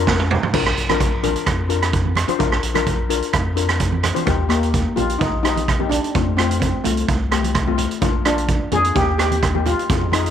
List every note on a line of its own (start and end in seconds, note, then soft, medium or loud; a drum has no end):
0.00 0.38 F2 loud
0.00 0.30 D4 medium
0.00 0.30 F4 medium
0.00 0.30 A#4 loud
0.07 kick medium
0.07 snare medium
0.20 high tom medium
0.31 mid tom medium
0.31 low conga medium
0.43 floor tom medium
0.43 high conga medium
0.53 0.73 A#1 loud
0.53 0.74 D4 medium
0.53 0.75 F4 medium
0.53 0.75 A#4 medium
0.53 kick loud
0.53 crash loud
0.66 cross-stick medium
0.77 1.36 A#1 medium
0.77 closed hi-hat medium
0.89 1.10 D4 medium
0.89 1.10 F4 medium
0.89 1.10 A#4 loud
0.89 cross-stick medium
0.89 closed hi-hat medium
0.89 high conga medium
1.00 kick medium
1.00 closed hi-hat medium
1.23 1.51 D4 medium
1.23 1.52 F4 medium
1.23 1.52 A#4 medium
1.23 closed hi-hat medium
1.23 high conga medium
1.23 low conga medium
1.36 closed hi-hat medium
1.46 2.25 F2 medium
1.46 kick medium
1.46 cross-stick medium
1.46 closed hi-hat medium
1.69 2.05 D4 medium
1.69 2.05 F4 medium
1.69 2.05 A#4 medium
1.69 closed hi-hat medium
1.82 cross-stick medium
1.82 closed hi-hat medium
1.93 kick medium
1.93 closed hi-hat medium
2.05 high conga medium
2.15 cross-stick medium
2.15 closed hi-hat medium
2.15 high conga medium
2.28 2.35 D4 medium
2.28 2.35 F4 medium
2.28 2.35 C5 medium
2.28 closed hi-hat medium
2.28 high conga medium
2.39 2.59 A#1 loud
2.39 2.60 D4 medium
2.39 2.61 F4 medium
2.39 2.61 A#4 medium
2.39 kick loud
2.39 closed hi-hat medium
2.52 cross-stick medium
2.63 3.22 A#1 medium
2.63 closed hi-hat medium
2.74 2.96 D4 medium
2.74 2.96 F4 medium
2.74 2.96 A#4 loud
2.74 cross-stick medium
2.74 closed hi-hat medium
2.74 high conga medium
2.86 kick medium
2.86 closed hi-hat medium
3.09 3.38 D4 medium
3.09 3.38 F4 medium
3.09 3.38 A#4 medium
3.09 closed hi-hat medium
3.22 closed hi-hat medium
3.33 4.12 F2 loud
3.33 kick medium
3.33 cross-stick medium
3.33 closed hi-hat medium
3.56 3.92 D4 medium
3.56 3.92 F4 medium
3.56 3.93 A#4 medium
3.56 closed hi-hat medium
3.69 cross-stick medium
3.69 closed hi-hat medium
3.80 kick medium
3.80 closed hi-hat medium
3.92 high conga medium
4.03 cross-stick medium
4.03 closed hi-hat medium
4.03 high conga medium
4.03 low conga medium
4.14 4.22 D4 medium
4.14 4.22 F4 medium
4.14 4.22 C5 medium
4.14 closed hi-hat medium
4.14 high conga medium
4.26 4.86 D#2 loud
4.26 4.41 A#3 medium
4.26 4.41 D#4 medium
4.26 4.42 G4 medium
4.26 kick loud
4.26 closed hi-hat medium
4.49 4.78 A#3 medium
4.49 4.98 A#3 medium
4.49 4.78 D#4 medium
4.49 4.78 G4 medium
4.49 cross-stick medium
4.49 closed hi-hat medium
4.63 closed hi-hat medium
4.74 kick medium
4.74 closed hi-hat medium
4.96 5.17 A#1 medium
4.96 5.25 A#3 medium
4.96 5.26 D#4 medium
4.96 5.21 F4 medium
4.96 5.26 G4 medium
4.96 closed hi-hat medium
4.96 high conga medium
4.96 low conga medium
5.09 closed hi-hat medium
5.19 6.00 A#1 loud
5.19 5.42 D#4 medium
5.19 kick medium
5.19 closed hi-hat medium
5.43 5.65 A#3 medium
5.43 5.92 D#4 medium
5.43 5.65 D#4 medium
5.43 5.66 G4 medium
5.43 cross-stick medium
5.43 closed hi-hat medium
5.57 closed hi-hat medium
5.57 high conga medium
5.68 kick medium
5.68 cross-stick medium
5.68 closed hi-hat medium
5.80 6.01 A#3 medium
5.80 6.01 D#4 medium
5.80 6.01 G4 medium
5.80 high conga medium
5.89 6.39 D4 loud
5.89 closed hi-hat medium
5.89 low conga medium
6.04 closed hi-hat medium
6.15 6.74 F2 loud
6.15 6.29 A3 medium
6.15 6.30 C4 medium
6.15 6.30 F4 medium
6.15 kick loud
6.15 closed hi-hat medium
6.37 6.66 A3 medium
6.37 6.58 C4 medium
6.37 6.67 C4 medium
6.37 6.67 F4 medium
6.37 cross-stick medium
6.37 closed hi-hat medium
6.51 closed hi-hat medium
6.60 6.85 C4 medium
6.60 kick medium
6.60 closed hi-hat medium
6.84 7.05 C2 medium
6.84 7.28 A3 medium
6.84 7.13 A3 medium
6.84 7.14 C4 medium
6.84 7.14 F4 medium
6.84 closed hi-hat medium
6.84 high conga medium
6.84 low conga medium
6.97 closed hi-hat medium
7.08 7.87 C2 loud
7.08 kick loud
7.08 closed hi-hat medium
7.31 7.53 A3 medium
7.31 7.53 C4 medium
7.31 7.53 G4 medium
7.31 cross-stick medium
7.31 closed hi-hat medium
7.43 closed hi-hat medium
7.43 high conga medium
7.55 kick medium
7.55 cross-stick medium
7.55 closed hi-hat medium
7.67 7.88 A3 medium
7.67 7.89 C4 medium
7.67 7.89 F4 medium
7.67 high conga medium
7.78 closed hi-hat medium
7.78 low conga medium
7.91 closed hi-hat medium
8.01 8.61 A#1 medium
8.01 8.16 A#3 medium
8.01 8.17 D4 medium
8.01 8.17 F4 medium
8.01 kick loud
8.01 closed hi-hat medium
8.25 8.54 A#3 medium
8.25 8.69 D4 loud
8.25 8.54 D4 medium
8.25 8.55 F4 medium
8.25 cross-stick medium
8.25 closed hi-hat medium
8.38 closed hi-hat medium
8.48 kick medium
8.48 closed hi-hat medium
8.71 8.92 F2 medium
8.71 8.94 A#3 medium
8.71 8.95 D4 medium
8.71 8.96 F4 medium
8.71 8.97 G#4 loud
8.71 closed hi-hat medium
8.71 high conga medium
8.71 low conga medium
8.84 closed hi-hat medium
8.95 9.74 D#2 medium
8.95 9.15 A#3 medium
8.95 9.15 D#4 medium
8.95 9.17 G4 medium
8.95 9.15 G4 medium
8.95 kick loud
8.95 closed hi-hat medium
9.18 9.40 A#3 medium
9.18 9.41 D#4 medium
9.18 9.67 G4 medium
9.18 9.41 G4 medium
9.18 cross-stick medium
9.18 closed hi-hat medium
9.31 closed hi-hat medium
9.31 high conga medium
9.43 kick medium
9.43 cross-stick medium
9.43 closed hi-hat medium
9.54 9.76 A#3 medium
9.54 9.76 D#4 medium
9.54 9.76 G4 medium
9.54 high conga medium
9.66 10.15 F4 medium
9.66 closed hi-hat medium
9.66 low conga medium
9.79 closed hi-hat medium
9.89 10.30 F2 medium
9.89 10.04 G#3 medium
9.89 10.04 C4 medium
9.89 10.04 F4 medium
9.89 kick loud
9.89 closed hi-hat medium
10.01 low conga medium
10.12 10.30 G#3 medium
10.12 10.30 C4 medium
10.12 10.30 D#4 medium
10.12 10.30 F4 medium
10.12 cross-stick medium
10.12 closed hi-hat medium
10.12 high conga medium
10.26 closed hi-hat medium